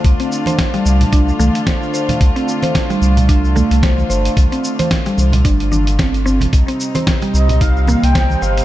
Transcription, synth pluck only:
X:1
M:4/4
L:1/16
Q:"Swing 16ths" 1/4=111
K:Dphr
V:1 name="Synth pluck"
z C z c z G,3 D z A, z c2 c z | z C z c z G,3 D z A, z c2 c z | z C z c z G,3 D z D z C z C z | z C z c z G,3 E z B, z c2 c z |]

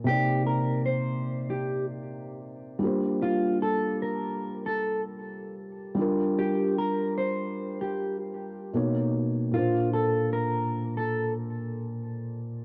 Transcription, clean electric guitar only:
X:1
M:4/4
L:1/16
Q:"Swing 16ths" 1/4=76
K:Gm
V:1 name="Clean electric guitar"
G2 B2 c3 G2 z6 z | F2 A2 B3 A2 z6 z | G2 B2 c3 G2 z6 z | F2 A2 B3 A2 z6 z |]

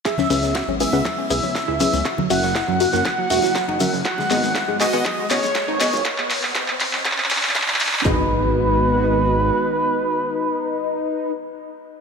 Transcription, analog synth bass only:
X:1
M:4/4
L:1/16
Q:1/4=120
K:G#m
V:1 name="Analog synth bass" clef=bass
z2 C,,3 G,,, z C,, z2 B,,, z2 C,, z C,, | z2 F,,,3 F,, z F,,, z2 E,,, z2 F,,, z F,,, | z2 G,,,3 G,, z G,,, z2 F,,, z2 G,,, z G,,, | z16 |
G,,,12 z4 | z16 |]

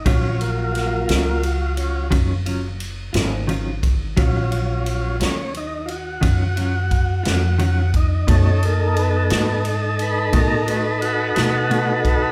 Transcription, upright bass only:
X:1
M:12/8
L:1/8
Q:3/8=58
K:Ebm
V:1 name="Upright bass" clef=bass
B,,,3 D,,3 G,,,3 A,,,3 | B,,,3 E,,3 G,,3 F,,3 | ^F,,3 A,,3 =A,,3 =B,,3 |]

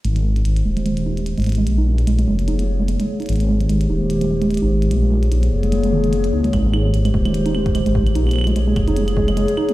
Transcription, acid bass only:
X:1
M:4/4
L:1/16
Q:"Swing 16ths" 1/4=148
K:Ab
V:1 name="Acid bass" clef=bass
A, A, z E G, z A, A, A, z E G, z A, A, A, | z E G, z A, A, A, z E G, z A, A, A, z E | G, z A, A, A, z E G, z A, A, A, z E G, z | A, A, A, z E G, z A, A, A, E, A, C A, E A, |
A, z E G, z A, A, A, z E G, z A, A, A, z | E G, z A, A, A, z E G, z A, A, A, z E G, |]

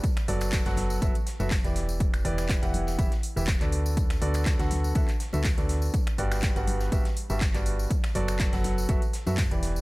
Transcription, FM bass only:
X:1
M:4/4
L:1/16
Q:"Swing 16ths" 1/4=122
K:Edor
V:1 name="FM bass" clef=bass
z2 F,,,3 F,,,3 F,,, z2 F,,,2 E,,,3- | E,,,2 E,,,3 E,,,3 E,,, z2 E,,,2 D,,3- | D,,2 D,,3 D,,3 D,, z2 D,,2 D,,3 | z2 G,,,3 G,,,3 G,,, z2 G,,,2 G,,,3 |
z2 F,,,3 F,,,3 F,,, z2 F,,2 E,,,3 |]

